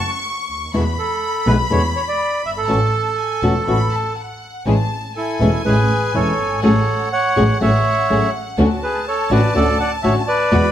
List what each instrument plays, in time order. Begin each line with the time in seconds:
Already playing: violin section C#6
0.00 bandoneon A5
0.50 double bass D2
0.74 double bass E2, nylon-string guitar B2 D3 G#3 B3 E4, violin section B5
0.99 bandoneon A4
1.46 double bass B1, nylon-string guitar B2 D3 G#3 B3 E4, bandoneon B4
1.70 double bass E2, nylon-string guitar B2 D3 G#3 B3 E4, bandoneon C#5
1.96 bandoneon C#5
2.08 bandoneon D5
2.44 double bass G1, bandoneon E5
2.57 bandoneon A4
2.68 double bass A1, nylon-string guitar E3 A3 C#4 F#4, violin section A5
3.18 violin section G#5
3.42 double bass E1, nylon-string guitar E3 A3 C#4 F#4, violin section A5
3.67 double bass A1, nylon-string guitar E3 A3 C#4 F#4, violin section B5
3.92 violin section A5
4.17 violin section F#5
4.66 double bass A1, nylon-string guitar E3 G#3 C#4 E4, string section A3 C#4 G#4, violin section A5
5.16 bandoneon E4 A4, violin section G#5
5.40 double bass E1, nylon-string guitar E3 G#3 C#4 E4, string section A3 C#4 G#4
5.64 double bass A1, nylon-string guitar E3 G#3 C#4 E4, string section A3 C#4 G#4, bandoneon G#4 B4
6.13 double bass E1, nylon-string guitar E3 G#3 C#4 E4, string section A3 C#4 G#4, bandoneon A4 C#5
6.39 double bass G1
6.63 double bass A1, nylon-string guitar F#3 A3 C#4 G#4, string section A3 F#4 G#4, bandoneon A4 C#5, violin section F#5
7.12 bandoneon C#5 F#5
7.36 double bass A1, nylon-string guitar F#3 A3 C#4 G#4, string section A3 F#4 G#4
7.60 double bass A1, nylon-string guitar F#3 A3 C#4 G#4, string section A3 F#4 G#4, bandoneon C#5 E5
8.09 double bass A1, nylon-string guitar F#3 A3 C#4 G#4, string section A3 F#4 G#4
8.58 double bass D2, nylon-string guitar D3 A3 C#4 F#4, string section C#4 D4 F#4, violin section A5
8.83 bandoneon G#4 B4
9.08 bandoneon A4 C#5
9.30 double bass A1, nylon-string guitar D3 A3 C#4 F#4, string section C#4 D4 F#4, bandoneon B4 D5
9.54 double bass D2, nylon-string guitar D3 A3 C#4 F#4, string section C#4 D4 F#4, bandoneon A4 D5
9.80 bandoneon D5 F#5
10.03 double bass A1, nylon-string guitar D3 A3 C#4 F#4, string section C#4 D4 F#4, bandoneon C#5 E5
10.27 bandoneon B4 D5
10.51 double bass E2, nylon-string guitar B2 E3 G#3 B3 F#4, string section G#3 E4 F#4, violin section B5